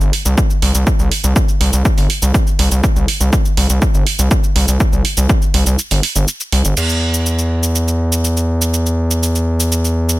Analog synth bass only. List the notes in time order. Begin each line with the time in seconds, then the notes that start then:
0.01 G1
0.25 C2
0.62 C2
0.75 C2
0.99 C2
1.24 C2
1.61 C2
1.73 C2
1.98 G1
2.22 C2
2.59 C2
2.71 C2
2.96 C2
3.20 C2
3.57 C2
3.70 C2
3.94 G1
4.19 C2
4.56 C2
4.68 C2
4.93 C2
5.17 C2
5.54 C2
5.66 C2
5.91 G1
6.16 G1
6.52 C2
6.65 G1
6.77 E2